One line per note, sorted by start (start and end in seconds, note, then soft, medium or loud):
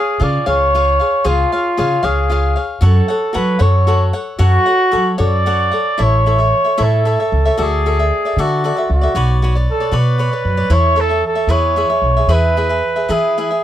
0.00 0.19 G#4 soft
0.00 0.25 G#4 medium
0.00 0.20 C#5 soft
0.00 0.20 F5 soft
0.20 0.38 C#3 medium
0.20 0.46 F4 medium
0.20 0.46 G#4 medium
0.20 0.45 C#5 medium
0.20 0.47 D5 medium
0.20 0.45 F5 medium
0.46 0.98 C#2 medium
0.46 0.73 F4 soft
0.46 0.74 G#4 soft
0.46 0.74 C#5 medium
0.46 1.28 C#5 medium
0.46 0.74 F5 medium
0.75 1.00 F4 medium
0.75 1.00 G#4 medium
0.75 1.00 C#5 medium
0.75 0.98 F5 medium
1.00 1.23 G#4 soft
1.00 1.24 C#5 soft
1.00 1.25 F5 soft
1.24 1.43 C#2 medium
1.24 1.52 F4 medium
1.24 2.06 F4 medium
1.24 1.52 G#4 medium
1.24 1.52 C#5 medium
1.24 1.51 F5 medium
1.52 1.77 G#4 soft
1.52 1.77 C#5 soft
1.52 1.78 F5 soft
1.77 1.95 C#3 medium
1.77 2.04 F4 medium
1.77 2.03 G#4 medium
1.77 2.02 C#5 medium
1.77 2.01 F5 medium
2.03 2.55 C#2 medium
2.03 2.28 F4 medium
2.03 2.29 G#4 medium
2.03 2.63 G#4 medium
2.03 2.30 C#5 medium
2.03 2.31 F5 medium
2.30 2.56 F4 medium
2.30 2.56 G#4 medium
2.30 2.55 C#5 medium
2.30 2.54 F5 medium
2.56 2.81 G#4 soft
2.56 2.81 C#5 soft
2.56 2.82 F5 soft
2.81 3.00 F#2 medium
2.81 3.09 F#4 medium
2.81 3.09 A4 medium
2.81 3.37 A4 medium
2.81 3.09 C#5 medium
2.81 3.07 F#5 medium
3.08 3.33 A4 soft
3.08 3.33 C#5 soft
3.08 3.34 F#5 medium
3.33 3.52 F#3 medium
3.33 3.59 F#4 medium
3.33 3.58 A4 medium
3.33 3.63 B4 medium
3.33 3.59 C#5 medium
3.33 3.58 F#5 medium
3.59 4.11 F#2 medium
3.59 3.86 F#4 medium
3.59 3.86 A4 medium
3.59 3.87 C#5 medium
3.59 4.13 C#5 medium
3.59 3.87 F#5 medium
3.87 4.13 F#4 medium
3.87 4.13 A4 medium
3.87 4.13 C#5 medium
3.87 4.12 F#5 medium
4.13 4.38 A4 soft
4.13 4.38 C#5 soft
4.13 4.38 F#5 medium
4.39 4.57 F#2 medium
4.39 4.66 F#4 medium
4.39 5.15 F#4 loud
4.39 4.66 A4 medium
4.39 4.65 C#5 medium
4.39 4.65 F#5 medium
4.66 4.91 A4 soft
4.66 4.92 C#5 soft
4.66 4.92 F#5 medium
4.91 5.10 F#3 medium
4.91 5.18 F#4 medium
4.91 5.17 A4 medium
4.91 5.17 C#5 medium
4.91 5.17 F#5 medium
5.18 5.71 F#2 medium
5.18 5.45 F#4 medium
5.18 5.45 A4 medium
5.18 5.46 C#5 medium
5.18 6.04 D5 medium
5.18 5.46 F#5 medium
5.46 5.72 F#4 medium
5.46 5.72 A4 medium
5.46 5.71 C#5 medium
5.46 5.70 F#5 medium
5.72 5.97 A4 soft
5.72 5.97 C#5 soft
5.72 5.98 F#5 soft
5.98 6.51 A1 medium
5.98 6.25 E4 medium
5.98 6.25 A4 medium
5.98 6.26 C#5 medium
5.98 6.26 E5 medium
6.03 6.85 C#5 medium
6.26 6.39 E4 soft
6.26 6.39 A4 soft
6.26 6.38 C#5 soft
6.26 6.37 E5 medium
6.38 6.65 A4 soft
6.38 6.64 C#5 soft
6.38 6.63 E5 soft
6.64 6.77 A4 soft
6.64 6.77 C#5 soft
6.64 6.77 E5 soft
6.78 7.14 A2 medium
6.78 7.04 E4 medium
6.78 7.04 A4 medium
6.78 7.06 C#5 medium
6.78 7.06 E5 medium
6.83 7.64 A4 medium
7.05 7.19 E4 medium
7.05 7.19 A4 medium
7.05 7.19 C#5 medium
7.05 7.19 E5 medium
7.20 7.45 A4 soft
7.20 7.46 C#5 soft
7.20 7.44 E5 soft
7.32 7.49 C#2 medium
7.45 7.57 A4 soft
7.45 7.58 C#5 soft
7.45 7.57 E5 medium
7.58 8.10 D2 medium
7.58 7.85 F#4 medium
7.58 7.85 A4 medium
7.58 7.85 D5 medium
7.58 7.85 E5 medium
7.62 8.42 G#4 medium
7.86 7.98 F#4 soft
7.86 7.99 A4 medium
7.86 7.98 D5 medium
7.86 7.98 E5 medium
7.99 8.25 A4 soft
7.99 8.24 D5 soft
7.99 8.24 E5 soft
8.25 8.38 A4 soft
8.25 8.37 D5 soft
8.25 8.38 E5 soft
8.37 8.71 D3 medium
8.37 8.63 F#4 medium
8.37 8.91 F#4 medium
8.37 8.63 A4 medium
8.37 8.64 D5 medium
8.37 8.64 E5 medium
8.64 8.77 F#4 soft
8.64 8.77 A4 medium
8.64 8.75 D5 medium
8.64 8.76 E5 medium
8.77 9.02 A4 soft
8.77 9.00 D5 soft
8.77 9.02 E5 soft
8.90 9.06 C#2 medium
8.90 9.39 F#4 medium
9.01 9.15 A4 soft
9.01 9.14 D5 soft
9.01 9.15 E5 soft
9.15 9.65 B1 medium
9.15 9.41 F#4 medium
9.15 9.42 B4 medium
9.15 9.42 C#5 medium
9.15 9.43 D5 medium
9.42 9.55 F#4 medium
9.42 9.55 B4 medium
9.42 9.55 C#5 medium
9.42 9.54 D5 soft
9.55 9.80 B4 soft
9.55 9.80 C#5 soft
9.55 9.79 D5 soft
9.71 9.93 A4 medium
9.80 9.91 B4 soft
9.80 9.92 C#5 soft
9.80 9.92 D5 soft
9.92 10.26 B2 medium
9.92 10.17 F#4 medium
9.92 10.18 B4 medium
9.92 10.18 C#5 medium
9.92 10.19 D5 medium
9.97 10.74 B4 medium
10.18 10.32 F#4 soft
10.18 10.32 B4 medium
10.18 10.32 C#5 medium
10.18 10.30 D5 medium
10.31 10.57 B4 soft
10.31 10.56 C#5 soft
10.31 10.56 D5 soft
10.45 10.62 F#2 medium
10.57 10.70 B4 soft
10.57 10.69 C#5 soft
10.57 10.70 D5 soft
10.70 11.21 E2 medium
10.70 10.94 E4 medium
10.70 10.95 A4 medium
10.70 10.96 C#5 medium
10.70 11.02 C#5 loud
10.70 10.96 E5 medium
10.96 11.10 E4 soft
10.96 11.10 A4 medium
10.96 11.09 C#5 medium
10.96 11.08 E5 medium
11.00 11.25 A4 medium
11.09 11.35 A4 soft
11.09 11.34 C#5 soft
11.09 11.34 E5 soft
11.27 11.52 A4 medium
11.35 11.48 A4 soft
11.35 11.49 C#5 soft
11.35 11.49 E5 soft
11.47 11.83 E2 medium
11.47 11.75 E4 medium
11.47 11.76 G#4 medium
11.47 11.76 B4 medium
11.47 12.33 C#5 medium
11.47 11.76 E5 medium
11.76 11.90 E4 soft
11.76 11.90 G#4 soft
11.76 11.89 B4 soft
11.76 11.88 E5 medium
11.89 12.17 G#4 soft
11.89 12.16 B4 soft
11.89 12.15 E5 soft
12.02 12.19 B1 medium
12.17 12.27 G#4 soft
12.17 12.28 B4 soft
12.17 12.29 E5 soft
12.27 12.80 E2 medium
12.27 12.55 E4 medium
12.27 12.56 G#4 medium
12.27 12.56 B4 medium
12.27 12.57 E5 medium
12.32 13.12 B4 medium
12.57 12.70 E4 soft
12.57 12.69 G#4 medium
12.57 12.69 B4 medium
12.57 12.68 E5 medium
12.69 12.96 G#4 soft
12.69 12.95 B4 soft
12.69 12.95 E5 soft
12.96 13.08 G#4 soft
12.96 13.08 B4 soft
12.96 13.09 E5 soft
13.08 13.44 E3 medium
13.08 13.36 E4 medium
13.08 13.37 G#4 medium
13.08 13.64 G#4 medium
13.08 13.38 B4 medium
13.08 13.37 E5 medium
13.38 13.51 E4 medium
13.38 13.50 G#4 medium
13.38 13.50 B4 medium
13.38 13.49 E5 medium
13.51 13.64 G#4 soft
13.51 13.64 B4 soft
13.51 13.64 E5 soft